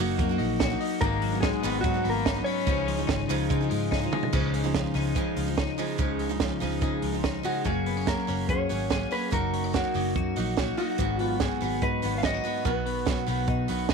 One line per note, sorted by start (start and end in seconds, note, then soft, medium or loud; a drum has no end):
0.00 0.21 F#1 loud
0.00 0.29 F#3 medium
0.00 1.02 F#3 medium
0.00 0.17 A#3 medium
0.00 0.30 A#3 loud
0.00 0.30 D#4 loud
0.00 0.38 D#4 medium
0.00 0.59 F#4 medium
0.00 0.28 F#4 loud
0.18 0.37 F#2 loud
0.18 1.06 A#3 medium
0.18 kick loud
0.18 hi-hat pedal medium
0.18 ride medium
0.29 0.71 A#3 soft
0.29 0.71 D#4 medium
0.29 0.69 F#4 medium
0.38 0.75 A#1 loud
0.38 0.80 D#4 medium
0.38 open hi-hat medium
0.60 1.06 F#4 medium
0.60 kick loud
0.60 snare loud
0.60 hi-hat pedal medium
0.60 ride medium
0.70 1.02 A#3 medium
0.70 1.02 D#4 medium
0.70 1.02 F#4 medium
0.80 1.42 D#4 medium
0.80 open hi-hat medium
1.01 1.51 G#1 loud
1.01 2.67 G#2 medium
1.01 1.32 D#3 medium
1.01 1.33 F#3 medium
1.01 1.40 A#3 medium
1.01 1.31 D#4 medium
1.01 1.44 A#4 medium
1.01 kick loud
1.01 hi-hat pedal medium
1.01 ride medium
1.22 1.82 F#3 medium
1.22 open hi-hat medium
1.32 1.63 F#3 soft
1.32 1.64 B3 soft
1.32 1.64 D#4 medium
1.40 1.81 G#3 medium
1.40 2.25 D#4 medium
1.40 1.81 G#4 medium
1.40 kick loud
1.40 snare loud
1.40 hi-hat pedal medium
1.40 ride medium
1.63 1.81 G#1 loud
1.63 1.95 G#2 medium
1.63 1.95 D#3 medium
1.63 1.95 F#3 medium
1.63 2.03 B3 medium
1.63 1.94 B3 medium
1.63 1.93 D#4 medium
1.63 open hi-hat medium
1.81 2.02 G#2 loud
1.81 2.09 F#3 medium
1.81 2.71 F#3 medium
1.81 2.11 F#4 medium
1.81 kick loud
1.81 hi-hat pedal medium
1.81 ride medium
1.94 2.37 F#3 soft
1.94 2.36 B3 soft
1.94 2.35 D#4 medium
2.04 2.40 G#1 loud
2.04 2.45 B3 medium
2.04 open hi-hat medium
2.09 2.36 A#3 medium
2.09 2.36 A#4 medium
2.25 2.90 D#4 medium
2.25 kick loud
2.25 snare loud
2.25 hi-hat pedal medium
2.25 ride medium
2.35 2.67 F#3 soft
2.35 2.68 B3 soft
2.35 2.67 D#4 medium
2.43 2.71 B3 medium
2.43 3.23 C#4 loud
2.43 3.24 C#5 loud
2.43 open hi-hat medium
2.66 3.02 C#2 loud
2.66 4.32 C#3 medium
2.66 2.98 C#3 medium
2.66 2.99 F3 medium
2.66 2.98 G#3 medium
2.66 2.96 D#4 medium
2.66 kick loud
2.66 hi-hat pedal medium
2.66 ride medium
2.87 3.49 F3 medium
2.87 open hi-hat medium
2.97 3.29 F3 soft
2.97 3.29 G#3 medium
2.97 3.29 D#4 medium
3.07 3.26 G#1 medium
3.07 3.91 D#4 medium
3.07 kick loud
3.07 snare loud
3.07 hi-hat pedal medium
3.07 ride medium
3.28 3.47 C#2 medium
3.28 3.60 C#3 medium
3.28 3.61 F3 loud
3.28 3.69 G#3 medium
3.28 3.61 G#3 loud
3.28 3.60 D#4 loud
3.28 open hi-hat medium
3.49 3.68 C#3 loud
3.49 4.74 F3 medium
3.49 kick loud
3.49 hi-hat pedal medium
3.49 ride medium
3.61 4.04 F3 medium
3.61 4.03 G#3 medium
3.61 4.01 D#4 medium
3.70 4.06 G#2 medium
3.70 4.12 G#3 medium
3.70 open hi-hat medium
3.91 4.78 D#4 medium
3.91 kick medium
3.91 snare medium
4.02 4.32 F3 soft
4.02 4.33 G#3 medium
4.02 4.33 D#4 medium
4.12 4.53 G#3 medium
4.12 mid tom medium
4.23 floor tom medium
4.33 4.82 C#2 medium
4.33 4.64 C#3 medium
4.33 5.98 C#3 medium
4.33 4.64 F3 medium
4.33 4.63 G#3 medium
4.33 4.62 D#4 medium
4.33 kick loud
4.33 crash medium
4.54 5.15 G#3 medium
4.54 open hi-hat medium
4.64 4.93 C#3 medium
4.64 4.94 F3 medium
4.64 4.95 G#3 medium
4.64 4.95 D#4 medium
4.74 5.35 F3 medium
4.74 kick loud
4.74 snare loud
4.74 closed hi-hat medium
4.94 5.13 C#2 medium
4.94 5.14 C#3 medium
4.94 5.15 F3 medium
4.94 5.16 G#3 medium
4.94 5.56 D#4 medium
4.94 5.17 D#4 medium
4.94 open hi-hat medium
5.15 5.47 C#3 medium
5.15 5.34 C#3 medium
5.15 5.47 F3 medium
5.15 5.78 G#3 medium
5.15 5.47 G#3 medium
5.15 5.45 D#4 medium
5.15 kick loud
5.15 closed hi-hat medium
5.36 5.72 C#2 medium
5.36 6.40 F3 medium
5.36 open hi-hat medium
5.47 5.77 F3 soft
5.47 5.78 G#3 medium
5.47 5.78 D#4 medium
5.58 6.60 D#4 medium
5.58 kick loud
5.58 snare loud
5.58 closed hi-hat medium
5.78 5.97 C#3 medium
5.78 5.98 F3 medium
5.78 6.19 G#3 medium
5.78 5.98 G#3 medium
5.78 5.99 D#4 medium
5.78 open hi-hat medium
5.98 6.48 C#2 medium
5.98 6.30 C#3 medium
5.98 7.65 C#3 medium
5.98 6.29 F3 medium
5.98 6.29 G#3 medium
5.98 6.28 D#4 medium
5.98 kick loud
5.98 closed hi-hat medium
6.19 6.82 G#3 medium
6.19 open hi-hat medium
6.29 6.59 C#3 medium
6.29 6.60 F3 medium
6.29 6.61 G#3 medium
6.29 6.61 D#4 medium
6.40 7.02 F3 medium
6.40 kick loud
6.40 snare loud
6.40 closed hi-hat medium
6.60 6.79 C#2 medium
6.60 6.80 C#3 medium
6.60 6.81 F3 medium
6.60 6.82 G#3 medium
6.60 7.23 D#4 medium
6.60 6.83 D#4 medium
6.60 open hi-hat medium
6.81 7.13 C#3 medium
6.81 7.00 C#3 medium
6.81 7.13 F3 medium
6.81 7.44 G#3 medium
6.81 7.13 G#3 medium
6.81 7.11 D#4 medium
6.81 kick loud
6.81 closed hi-hat medium
7.02 7.38 C#2 medium
7.02 7.70 F3 medium
7.02 open hi-hat medium
7.12 7.43 F3 soft
7.12 7.43 G#3 medium
7.12 7.44 D#4 medium
7.24 7.70 D#4 medium
7.24 kick medium
7.24 snare loud
7.24 closed hi-hat medium
7.43 7.64 C#3 medium
7.43 7.65 F3 medium
7.43 7.65 G#3 medium
7.43 7.70 G#3 medium
7.43 7.66 D#4 medium
7.43 7.66 F#4 medium
7.43 open hi-hat medium
7.65 8.15 F#1 medium
7.65 8.06 F#3 medium
7.65 9.32 F#3 medium
7.65 8.07 A#3 medium
7.65 8.07 C#4 medium
7.65 8.09 G#4 medium
7.65 8.08 G#4 medium
7.65 kick loud
7.65 closed hi-hat medium
7.86 7.97 B3 medium
7.86 open hi-hat medium
7.97 8.27 C#4 soft
8.06 8.26 F#3 medium
8.06 8.27 A#3 medium
8.06 9.36 A#3 medium
8.06 8.28 C#4 medium
8.06 8.29 G#4 medium
8.06 8.50 A#4 medium
8.06 kick loud
8.06 snare medium
8.06 closed hi-hat medium
8.27 8.50 F#1 medium
8.27 8.69 F#3 medium
8.27 8.70 A#3 medium
8.27 8.69 C#4 medium
8.27 8.70 C#4 medium
8.27 8.71 G#4 medium
8.27 open hi-hat medium
8.49 8.67 F#2 medium
8.49 8.90 G#4 medium
8.49 9.12 C#5 medium
8.49 kick loud
8.49 closed hi-hat medium
8.69 9.06 G#1 medium
8.69 8.89 F#3 medium
8.69 8.90 A#3 soft
8.69 9.11 C#4 medium
8.69 8.91 C#4 medium
8.69 8.92 G#4 medium
8.69 open hi-hat medium
8.90 9.10 F#3 medium
8.90 9.10 A#3 medium
8.90 9.11 C#4 medium
8.90 9.36 G#4 medium
8.90 9.12 G#4 medium
8.90 kick medium
8.90 snare loud
8.90 closed hi-hat medium
9.11 9.30 F#3 medium
9.11 9.31 A#3 medium
9.11 9.37 C#4 medium
9.11 9.32 C#4 medium
9.11 9.32 G#4 medium
9.11 9.31 B4 medium
9.11 open hi-hat medium
9.31 9.82 F#1 medium
9.31 9.73 F#3 medium
9.31 11.02 F#3 medium
9.31 9.73 A#3 medium
9.31 9.75 D#4 medium
9.31 9.75 F#4 medium
9.31 9.71 A#4 medium
9.31 kick loud
9.31 closed hi-hat medium
9.54 9.64 C#4 medium
9.54 open hi-hat medium
9.64 9.94 D#4 soft
9.73 9.93 F#3 medium
9.73 9.94 A#3 medium
9.73 11.03 A#3 medium
9.73 9.95 D#4 medium
9.73 10.13 F#4 medium
9.73 9.96 F#4 medium
9.73 kick loud
9.73 snare loud
9.73 closed hi-hat medium
9.94 10.17 F#1 medium
9.94 10.36 F#3 medium
9.94 10.36 A#3 medium
9.94 10.36 D#4 soft
9.94 10.38 D#4 medium
9.94 10.39 F#4 medium
9.94 open hi-hat medium
10.16 10.33 F#2 medium
10.16 10.57 F#4 medium
10.16 kick loud
10.16 closed hi-hat medium
10.36 10.72 A#1 medium
10.36 10.55 F#3 medium
10.36 10.57 A#3 medium
10.36 10.78 D#4 medium
10.36 10.58 D#4 medium
10.36 10.59 F#4 medium
10.36 open hi-hat medium
10.57 10.76 F#3 medium
10.57 10.77 A#3 medium
10.57 10.78 D#4 medium
10.57 11.82 F#4 medium
10.57 10.79 F#4 medium
10.57 kick medium
10.57 snare loud
10.57 closed hi-hat medium
10.77 10.98 F#3 medium
10.77 10.99 A#3 medium
10.77 11.20 D#4 medium
10.77 11.00 D#4 medium
10.77 11.20 F#4 medium
10.77 10.99 F#4 medium
10.77 open hi-hat medium
10.98 11.48 G#1 medium
10.98 11.40 G#2 medium
10.98 12.65 G#2 medium
10.98 11.40 D#3 medium
10.98 11.41 F#3 medium
10.98 11.42 B3 medium
10.98 11.43 F#4 medium
10.98 kick loud
10.98 closed hi-hat medium
11.19 11.61 B3 medium
11.19 11.36 F4 medium
11.19 open hi-hat medium
11.40 11.59 D#3 medium
11.40 13.06 F#3 medium
11.40 11.61 F#3 medium
11.40 11.62 B3 medium
11.40 11.63 F#4 medium
11.40 11.84 G#4 medium
11.40 kick loud
11.40 snare medium
11.40 closed hi-hat medium
11.61 11.79 G#1 medium
11.61 12.02 D#3 medium
11.61 12.03 F#3 medium
11.61 12.03 B3 medium
11.61 12.04 F#4 medium
11.61 open hi-hat medium
11.82 12.00 G#2 medium
11.82 12.23 D#4 medium
11.82 12.18 B4 medium
11.82 kick loud
11.82 closed hi-hat medium
12.02 12.38 G#1 medium
12.02 12.21 D#3 medium
12.02 12.23 F#3 medium
12.02 12.43 B3 medium
12.02 12.24 B3 medium
12.02 12.25 F#4 medium
12.02 open hi-hat medium
12.18 12.24 F5 medium
12.22 12.42 D#3 medium
12.22 12.44 F#3 medium
12.22 12.45 B3 medium
12.22 12.34 C#4 medium
12.22 12.46 F#4 medium
12.22 12.63 D#5 loud
12.22 kick medium
12.22 snare loud
12.22 closed hi-hat medium
12.34 12.70 D#4 medium
12.44 12.64 D#3 medium
12.44 12.65 F#3 medium
12.44 12.69 B3 medium
12.44 12.65 B3 medium
12.44 12.66 F#4 medium
12.44 open hi-hat medium
12.65 13.15 B1 medium
12.65 13.07 B2 medium
12.65 13.94 B2 medium
12.65 13.04 D#3 medium
12.65 13.06 F#3 medium
12.65 13.06 B3 medium
12.65 13.08 F#4 medium
12.65 13.24 B4 medium
12.65 kick loud
12.65 closed hi-hat medium
12.86 13.26 B3 medium
12.86 open hi-hat medium
13.06 13.25 D#3 medium
13.06 13.94 F#3 medium
13.06 13.26 F#3 medium
13.06 13.27 B3 medium
13.06 13.28 F#4 medium
13.06 kick loud
13.06 snare loud
13.06 closed hi-hat medium
13.27 13.45 B1 loud
13.27 13.67 D#3 medium
13.27 13.69 F#3 medium
13.27 13.68 B3 medium
13.27 13.69 B3 medium
13.27 13.71 F#4 medium
13.27 open hi-hat medium
13.48 13.66 B2 loud
13.48 13.89 D#4 medium
13.48 kick loud
13.48 closed hi-hat medium
13.68 13.94 B1 medium
13.68 13.89 D#3 medium
13.68 13.90 F#3 medium
13.68 13.94 B3 medium
13.68 13.90 B3 medium
13.68 13.91 F#4 medium
13.68 open hi-hat medium
13.89 13.94 D#3 medium
13.89 13.94 D#4 medium
13.89 kick medium
13.89 snare loud
13.89 closed hi-hat medium